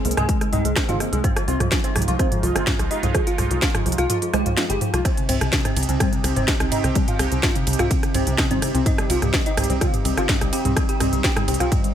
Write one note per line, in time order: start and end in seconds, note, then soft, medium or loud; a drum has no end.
0.00 1.20 C3 medium
0.00 1.20 C4 medium
0.00 1.20 D#4 medium
0.05 0.16 C2 loud
0.05 0.12 G#3 medium
0.05 0.13 A#3 medium
0.05 0.12 G#4 medium
0.05 0.13 A#4 medium
0.05 open hi-hat loud
0.11 closed hi-hat medium
0.17 0.27 C2 medium
0.17 0.25 G#3 loud
0.17 0.24 G#4 medium
0.17 0.25 G#4 medium
0.17 0.24 G#5 loud
0.17 cross-stick medium
0.17 closed hi-hat soft
0.17 mid tom loud
0.29 0.36 G#3 medium
0.29 0.37 G#3 loud
0.29 0.37 G#4 medium
0.29 0.36 G#4 medium
0.29 kick loud
0.29 closed hi-hat medium
0.41 0.48 G#3 medium
0.41 0.48 G#4 medium
0.41 cross-stick medium
0.41 closed hi-hat soft
0.53 0.63 C2 loud
0.53 0.57 G#3 loud
0.53 0.60 D#4 loud
0.53 0.57 G#4 medium
0.53 0.60 D#5 medium
0.53 mid tom loud
0.53 open hi-hat loud
0.65 0.75 C2 medium
0.65 0.72 G#3 medium
0.65 0.72 G#4 medium
0.65 closed hi-hat soft
0.76 0.84 G#3 medium
0.76 0.84 G#4 medium
0.76 0.84 C5 medium
0.76 0.84 C6 medium
0.76 kick loud
0.76 cross-stick medium
0.76 snare loud
0.76 closed hi-hat medium
0.89 0.99 G1 medium
0.89 1.23 C3 medium
0.89 1.23 D#3 medium
0.89 1.23 G#3 medium
0.89 0.93 C4 medium
0.89 0.95 F4 loud
0.89 0.93 C5 medium
0.89 0.95 F5 medium
0.89 closed hi-hat soft
0.89 mid tom loud
1.00 1.07 G#3 medium
1.00 1.08 A#3 medium
1.00 1.07 G#4 medium
1.00 1.08 A#4 medium
1.00 cross-stick medium
1.00 open hi-hat loud
1.13 1.22 C2 medium
1.13 1.20 G#3 loud
1.13 1.19 G#3 medium
1.13 1.19 G#4 medium
1.13 1.20 G#4 medium
1.13 closed hi-hat soft
1.24 5.01 G#3 medium
1.24 1.31 C4 loud
1.24 5.01 D#4 medium
1.24 5.01 F4 medium
1.24 1.36 F4 medium
1.24 1.31 C5 loud
1.24 1.36 F5 medium
1.24 kick loud
1.24 closed hi-hat medium
1.24 mid tom loud
1.36 1.43 F3 medium
1.36 1.43 F4 medium
1.36 cross-stick medium
1.36 closed hi-hat soft
1.48 1.58 C2 loud
1.48 1.55 C4 medium
1.48 1.53 F4 loud
1.48 1.55 C5 loud
1.48 1.53 F5 medium
1.48 open hi-hat loud
1.60 1.70 C2 medium
1.60 1.67 F3 medium
1.60 1.67 F4 medium
1.60 cross-stick medium
1.60 closed hi-hat soft
1.60 mid tom loud
1.72 1.79 F3 medium
1.72 1.79 F4 medium
1.72 1.80 G#5 medium
1.72 1.80 G#6 medium
1.72 kick loud
1.72 snare loud
1.72 closed hi-hat medium
1.84 1.91 C4 loud
1.84 1.89 G#4 medium
1.84 1.91 C5 loud
1.84 1.89 G#5 medium
1.84 closed hi-hat soft
1.95 2.06 C2 medium
1.95 2.03 F3 medium
1.95 2.03 F4 medium
1.95 2.04 G4 medium
1.95 2.04 G5 medium
1.95 cross-stick medium
1.95 mid tom loud
1.95 open hi-hat loud
2.02 closed hi-hat medium
2.08 2.18 C2 medium
2.08 2.14 F3 medium
2.08 2.14 F4 medium
2.08 2.15 F4 loud
2.08 2.15 F5 medium
2.08 closed hi-hat soft
2.19 3.12 D#3 medium
2.19 3.12 F3 medium
2.19 3.12 G#3 medium
2.19 2.27 C4 medium
2.19 2.27 F4 loud
2.19 2.27 C5 medium
2.19 2.27 F5 medium
2.19 kick loud
2.19 cross-stick medium
2.19 closed hi-hat medium
2.32 2.38 F3 medium
2.32 2.38 F4 medium
2.32 closed hi-hat soft
2.32 mid tom loud
2.43 2.54 C2 loud
2.43 2.50 F3 medium
2.43 2.48 F4 loud
2.43 2.50 F4 medium
2.43 2.48 F5 medium
2.43 open hi-hat loud
2.55 2.65 G1 medium
2.55 2.62 C4 loud
2.55 2.63 F4 medium
2.55 2.62 C5 loud
2.55 2.63 F5 medium
2.55 cross-stick medium
2.55 closed hi-hat soft
2.67 2.74 F3 medium
2.67 2.74 F4 medium
2.67 2.75 G#5 medium
2.67 2.75 G#6 medium
2.67 kick loud
2.67 snare loud
2.67 closed hi-hat medium
2.67 mid tom medium
2.79 2.89 C2 medium
2.79 2.86 F3 medium
2.79 2.86 F4 medium
2.79 2.84 G#4 medium
2.79 2.84 G#5 medium
2.79 cross-stick medium
2.79 closed hi-hat soft
2.91 2.98 D#4 medium
2.91 2.99 G4 medium
2.91 2.98 D#5 medium
2.91 2.99 G5 medium
2.91 open hi-hat loud
3.03 3.13 C2 medium
3.03 3.10 F3 medium
3.03 3.10 F4 medium
3.03 3.11 F4 loud
3.03 3.11 F5 medium
3.03 closed hi-hat soft
3.03 mid tom medium
3.14 3.25 D#3 medium
3.14 3.22 F3 medium
3.14 3.25 F3 medium
3.14 3.25 G#3 loud
3.14 3.22 F4 medium
3.14 3.26 F4 medium
3.14 3.26 F5 medium
3.14 kick loud
3.14 cross-stick medium
3.14 closed hi-hat medium
3.27 3.34 F4 medium
3.27 3.34 F5 medium
3.27 closed hi-hat medium
3.38 3.49 C2 medium
3.38 3.45 F3 medium
3.38 3.43 F4 loud
3.38 3.46 F4 medium
3.38 3.43 F5 medium
3.38 cross-stick medium
3.38 mid tom medium
3.38 open hi-hat loud
3.51 3.60 C2 medium
3.51 3.57 F3 medium
3.51 3.57 F4 medium
3.51 closed hi-hat soft
3.62 3.69 F4 loud
3.62 3.69 F5 medium
3.62 3.70 G#5 medium
3.62 kick loud
3.62 snare loud
3.62 closed hi-hat medium
3.74 3.81 F3 medium
3.74 3.81 F4 medium
3.74 3.79 G#4 medium
3.74 3.79 G#5 medium
3.74 cross-stick medium
3.74 closed hi-hat soft
3.74 mid tom loud
3.86 3.97 C2 medium
3.86 3.93 F3 medium
3.86 3.93 F4 medium
3.86 3.94 G4 medium
3.86 3.94 G5 medium
3.86 open hi-hat loud
3.92 closed hi-hat medium
3.98 4.08 C2 medium
3.98 4.05 F4 medium
3.98 4.06 F4 loud
3.98 4.06 F5 medium
3.98 4.05 F5 medium
3.98 cross-stick medium
3.98 closed hi-hat soft
4.10 4.17 F3 medium
4.10 4.18 F4 loud
4.10 4.17 F4 medium
4.10 4.18 F5 medium
4.10 closed hi-hat medium
4.10 mid tom medium
4.22 4.29 F3 medium
4.22 4.29 F4 medium
4.22 closed hi-hat soft
4.33 4.44 C2 loud
4.33 4.44 D#3 loud
4.33 4.44 F3 medium
4.33 4.44 G#3 loud
4.33 4.38 F4 loud
4.33 4.41 G4 medium
4.33 4.38 F5 medium
4.33 4.41 G5 medium
4.33 cross-stick medium
4.33 open hi-hat loud
4.46 4.56 C2 medium
4.46 4.53 F3 medium
4.46 4.53 F4 medium
4.46 4.53 F5 medium
4.46 closed hi-hat soft
4.46 mid tom loud
4.57 4.64 F3 medium
4.57 4.65 F4 medium
4.57 4.65 G#5 medium
4.57 4.65 G#6 medium
4.57 cross-stick medium
4.57 snare loud
4.57 closed hi-hat medium
4.70 4.79 G1 medium
4.70 4.76 G4 loud
4.70 4.74 G#4 medium
4.70 4.76 G5 medium
4.70 4.74 G#5 medium
4.70 closed hi-hat soft
4.81 4.88 F3 medium
4.81 4.88 F4 medium
4.81 4.89 G4 medium
4.81 4.89 G5 medium
4.81 mid tom medium
4.81 open hi-hat loud
4.94 5.03 C2 medium
4.94 5.00 F3 medium
4.94 5.01 F4 loud
4.94 5.00 F4 medium
4.94 5.01 F5 medium
4.94 cross-stick medium
4.94 closed hi-hat soft
5.05 11.94 C3 medium
5.05 5.17 C4 medium
5.05 5.12 C4 loud
5.05 11.94 C4 medium
5.05 11.94 D#4 medium
5.05 11.94 G4 medium
5.05 5.12 C5 loud
5.05 kick loud
5.05 cross-stick medium
5.05 closed hi-hat medium
5.05 ride medium
5.17 5.24 C3 medium
5.17 5.24 C4 medium
5.17 closed hi-hat soft
5.29 5.39 C2 medium
5.29 5.34 C4 loud
5.29 5.36 C4 loud
5.29 5.34 C5 medium
5.29 5.36 C5 medium
5.29 mid tom medium
5.29 open hi-hat loud
5.29 ride medium
5.41 5.51 C2 medium
5.41 5.48 C3 medium
5.41 5.48 C4 medium
5.41 cross-stick medium
5.41 closed hi-hat soft
5.53 5.60 C4 medium
5.53 5.61 D#5 medium
5.53 5.61 D#6 medium
5.53 kick loud
5.53 snare loud
5.53 closed hi-hat medium
5.53 ride medium
5.65 5.72 C4 loud
5.65 5.69 D#4 medium
5.65 5.72 C5 loud
5.65 5.69 D#5 medium
5.65 cross-stick medium
5.65 closed hi-hat soft
5.65 mid tom medium
5.76 5.87 C2 medium
5.76 5.84 C3 medium
5.76 5.84 C4 medium
5.76 5.84 C5 medium
5.76 open hi-hat loud
5.76 ride medium
5.83 closed hi-hat medium
5.89 5.99 C2 medium
5.89 5.96 C3 medium
5.89 5.96 C4 loud
5.89 5.95 C4 medium
5.89 5.96 C5 medium
5.89 closed hi-hat soft
6.00 6.93 C3 medium
6.00 6.93 D#3 medium
6.00 6.93 G3 medium
6.00 6.08 C4 loud
6.00 6.07 C4 loud
6.00 6.08 C5 medium
6.00 6.07 C5 medium
6.00 kick loud
6.00 cross-stick medium
6.00 closed hi-hat medium
6.00 mid tom medium
6.00 ride medium
6.13 6.19 C3 medium
6.13 6.19 C4 medium
6.13 closed hi-hat soft
6.24 6.35 C2 loud
6.24 6.31 C3 medium
6.24 6.29 C4 loud
6.24 6.31 C4 medium
6.24 6.29 C5 medium
6.24 cross-stick medium
6.24 open hi-hat loud
6.24 ride medium
6.36 6.46 G1 medium
6.36 6.44 C4 medium
6.36 6.43 C4 loud
6.36 6.44 C5 medium
6.36 6.43 C5 medium
6.36 closed hi-hat soft
6.36 mid tom medium
6.48 6.55 C3 medium
6.48 6.55 C4 medium
6.48 6.56 D#5 medium
6.48 kick loud
6.48 snare loud
6.48 closed hi-hat medium
6.48 ride medium
6.60 6.70 C2 medium
6.60 6.67 C3 medium
6.60 6.67 C4 medium
6.60 6.65 D#4 medium
6.60 6.65 D#5 medium
6.60 cross-stick medium
6.60 closed hi-hat soft
6.72 6.80 C4 medium
6.72 6.79 D#4 loud
6.72 6.80 C5 medium
6.72 6.79 D#5 medium
6.72 mid tom medium
6.72 open hi-hat loud
6.72 ride medium
6.84 6.94 C2 medium
6.84 6.91 C3 medium
6.84 6.91 C4 loud
6.84 6.91 C4 medium
6.84 6.91 C5 medium
6.84 cross-stick medium
6.84 closed hi-hat soft
6.95 7.06 C3 medium
6.95 7.06 D#3 medium
6.95 7.06 G3 loud
6.95 7.07 C4 medium
6.95 7.03 C4 medium
6.95 7.07 C5 medium
6.95 kick loud
6.95 closed hi-hat medium
6.95 ride medium
7.08 7.15 F4 loud
7.08 7.15 F5 medium
7.08 closed hi-hat soft
7.08 mid tom medium
7.19 7.30 C2 medium
7.19 7.26 C3 medium
7.19 7.24 C4 loud
7.19 7.27 C4 medium
7.19 7.24 C5 medium
7.19 cross-stick medium
7.19 open hi-hat loud
7.19 ride medium
7.32 7.41 C2 medium
7.32 7.38 C3 medium
7.32 7.38 C4 medium
7.32 closed hi-hat soft
7.43 7.50 F4 loud
7.43 7.51 D#5 medium
7.43 7.50 F5 loud
7.43 7.51 D#6 medium
7.43 kick loud
7.43 cross-stick medium
7.43 snare loud
7.43 closed hi-hat medium
7.43 mid tom medium
7.43 ride medium
7.55 7.62 C3 medium
7.55 7.62 C4 medium
7.55 7.60 D#4 medium
7.55 7.60 D#5 medium
7.55 closed hi-hat soft
7.67 7.77 C2 loud
7.67 7.74 C3 medium
7.67 7.75 C4 medium
7.67 7.74 C4 medium
7.67 7.75 C5 medium
7.67 open hi-hat loud
7.67 ride medium
7.73 closed hi-hat medium
7.79 7.89 C2 medium
7.79 7.87 C4 loud
7.79 7.86 F4 loud
7.79 7.87 C5 medium
7.79 7.86 F5 loud
7.79 cross-stick medium
7.79 closed hi-hat soft
7.79 mid tom medium
7.91 7.98 C3 medium
7.91 7.99 C4 loud
7.91 7.98 C4 medium
7.91 7.99 C5 medium
7.91 kick loud
7.91 closed hi-hat medium
7.91 ride medium
8.03 8.10 C3 medium
8.03 8.10 C4 medium
8.03 cross-stick medium
8.03 closed hi-hat soft
8.14 8.25 C2 medium
8.14 8.19 C4 loud
8.14 8.22 C4 loud
8.14 8.22 C5 medium
8.14 8.19 C5 medium
8.14 mid tom medium
8.14 open hi-hat loud
8.14 ride medium
8.27 8.37 C2 medium
8.27 8.34 C3 medium
8.27 8.34 C4 medium
8.27 8.34 C5 medium
8.27 closed hi-hat soft
8.38 8.46 C3 medium
8.38 8.46 C4 medium
8.38 8.46 D#5 medium
8.38 8.46 D#6 medium
8.38 kick loud
8.38 cross-stick medium
8.38 snare loud
8.38 closed hi-hat medium
8.38 ride medium
8.51 8.60 G1 medium
8.51 9.79 C3 medium
8.51 9.79 D#3 medium
8.51 9.79 G3 medium
8.51 8.57 C4 medium
8.51 8.55 D#4 medium
8.51 8.57 C5 loud
8.51 8.55 D#5 medium
8.51 closed hi-hat soft
8.51 mid tom medium
8.62 8.69 C3 medium
8.62 8.69 C4 medium
8.62 8.70 C4 medium
8.62 8.70 C5 medium
8.62 cross-stick medium
8.62 open hi-hat loud
8.62 ride medium
8.74 8.84 C2 medium
8.74 8.81 C3 medium
8.74 8.81 C4 medium
8.74 8.82 C4 loud
8.74 8.82 C5 medium
8.74 closed hi-hat soft
8.86 8.98 C4 medium
8.86 8.93 D#4 loud
8.86 8.98 C5 medium
8.86 8.93 D#5 loud
8.86 kick loud
8.86 closed hi-hat medium
8.86 mid tom medium
8.86 ride medium
8.98 9.05 G3 medium
8.98 9.05 G4 medium
8.98 cross-stick medium
8.98 closed hi-hat soft
9.10 9.20 C2 medium
9.10 9.15 C4 loud
9.10 9.17 F4 loud
9.10 9.15 C5 medium
9.10 9.17 F5 loud
9.10 open hi-hat loud
9.10 ride medium
9.22 9.32 C2 medium
9.22 9.29 G3 medium
9.22 9.29 G4 medium
9.22 cross-stick medium
9.22 closed hi-hat soft
9.22 mid tom medium
9.34 9.41 G3 medium
9.34 9.42 D#5 medium
9.34 9.42 D#6 medium
9.34 kick loud
9.34 snare loud
9.34 closed hi-hat medium
9.34 ride medium
9.46 9.50 D#4 medium
9.46 9.53 D#4 medium
9.46 9.50 D#5 medium
9.46 9.53 D#5 loud
9.46 closed hi-hat soft
9.57 9.68 C2 medium
9.57 9.65 G3 medium
9.57 9.65 C4 medium
9.57 9.65 G4 medium
9.57 9.65 C5 medium
9.57 cross-stick medium
9.57 mid tom medium
9.57 open hi-hat loud
9.57 ride medium
9.64 closed hi-hat medium
9.70 9.79 C2 medium
9.70 9.77 G3 medium
9.70 9.77 C4 loud
9.70 9.76 G4 medium
9.70 9.77 C5 medium
9.70 closed hi-hat soft
9.81 10.74 C3 medium
9.81 10.74 D#3 medium
9.81 10.74 G3 medium
9.81 9.89 C4 loud
9.81 9.88 F4 loud
9.81 9.89 C5 medium
9.81 9.88 F5 medium
9.81 kick loud
9.81 cross-stick medium
9.81 closed hi-hat medium
9.81 ride medium
9.94 10.00 G3 medium
9.94 10.00 G4 medium
9.94 closed hi-hat soft
9.94 mid tom medium
10.05 10.16 C2 medium
10.05 10.12 G3 medium
10.05 10.10 C4 loud
10.05 10.12 G4 medium
10.05 10.10 C5 medium
10.05 open hi-hat loud
10.05 ride medium
10.17 10.27 G1 medium
10.17 10.25 C4 medium
10.17 10.24 F4 loud
10.17 10.25 C5 medium
10.17 10.24 F5 medium
10.17 cross-stick medium
10.17 closed hi-hat soft
10.29 10.36 G3 medium
10.29 10.37 D#5 medium
10.29 10.37 D#6 medium
10.29 kick loud
10.29 snare loud
10.29 closed hi-hat medium
10.29 mid tom medium
10.29 ride medium
10.41 10.51 C2 medium
10.41 10.48 G3 medium
10.41 10.46 D#4 medium
10.41 10.48 G4 medium
10.41 10.46 D#5 medium
10.41 cross-stick medium
10.41 closed hi-hat soft
10.53 10.61 C4 medium
10.53 10.60 G4 medium
10.53 10.61 C5 medium
10.53 10.60 G5 medium
10.53 open hi-hat loud
10.53 ride medium
10.65 10.75 C2 medium
10.65 10.72 G3 medium
10.65 10.72 C4 loud
10.65 10.72 G4 medium
10.65 10.72 C5 medium
10.65 closed hi-hat soft
10.65 mid tom medium
10.76 10.84 G3 medium
10.76 10.88 C4 medium
10.76 10.84 G4 medium
10.76 10.88 C5 medium
10.76 kick loud
10.76 cross-stick medium
10.76 closed hi-hat medium
10.76 ride medium
10.89 10.95 G4 loud
10.89 10.96 G5 medium
10.89 closed hi-hat soft
11.00 11.11 C2 medium
11.00 11.07 G3 medium
11.00 11.05 C4 loud
11.00 11.07 G4 medium
11.00 11.05 C5 medium
11.00 cross-stick medium
11.00 mid tom loud
11.00 open hi-hat loud
11.00 ride medium
11.13 11.22 C2 medium
11.13 11.19 G3 medium
11.13 11.19 G4 medium
11.13 closed hi-hat soft
11.24 11.31 G4 loud
11.24 11.32 D#5 medium
11.24 11.31 G5 loud
11.24 11.32 D#6 medium
11.24 kick loud
11.24 snare loud
11.24 closed hi-hat medium
11.24 ride medium
11.36 11.43 G3 medium
11.36 11.41 D#4 medium
11.36 11.43 G4 medium
11.36 11.41 D#5 medium
11.36 cross-stick medium
11.36 closed hi-hat soft
11.36 mid tom loud
11.48 11.58 C2 medium
11.48 11.55 G3 medium
11.48 11.56 C4 medium
11.48 11.55 G4 medium
11.48 11.56 C5 medium
11.48 open hi-hat loud
11.48 ride medium
11.54 closed hi-hat medium
11.60 11.70 C2 medium
11.60 11.68 C4 loud
11.60 11.67 F4 medium
11.60 11.68 C5 medium
11.60 11.67 F5 medium
11.60 cross-stick medium
11.60 closed hi-hat soft
11.71 11.79 G3 medium
11.71 11.80 C4 loud
11.71 11.79 G4 medium
11.71 11.80 C5 medium
11.71 kick loud
11.71 closed hi-hat medium
11.71 mid tom loud
11.71 ride medium
11.84 11.91 G3 medium
11.84 11.91 G4 medium
11.84 closed hi-hat soft